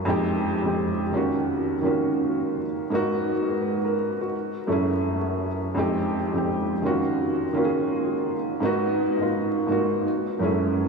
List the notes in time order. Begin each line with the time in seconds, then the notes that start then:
0.05 F2 G#3 C4 D#4
0.10 G4
0.62 F2 G#3 C4 D#4
0.67 G4
1.12 D#3 A#3 C#4 F4
1.16 F#4
1.82 D#3 A#3 C#4 F4
1.87 F#4
2.90 G#2 A#3 B3 D#4
2.95 F#4
3.48 G#4
3.62 B4
3.85 A#4
4.21 F#4
4.67 F#2 A3 C#4 E4
4.72 G#4
5.75 F2 G#3 C4 D#4
5.79 G4
6.33 F2 G#3 C4 D#4
6.37 G4
6.82 D#3 A#3 C#4 F4
6.86 F#4
7.53 D#3 A#3 C#4 F4
7.58 F#4
7.64 G#4
8.60 G#2 A#3 B3 D#4
8.65 F#4
9.18 G#2 A#3 B3 D#4
9.22 F4
9.67 G#2 A#3 B3 D#4
9.72 F#4
10.39 F#2 G#3 C#4 E4
10.44 A3 G#4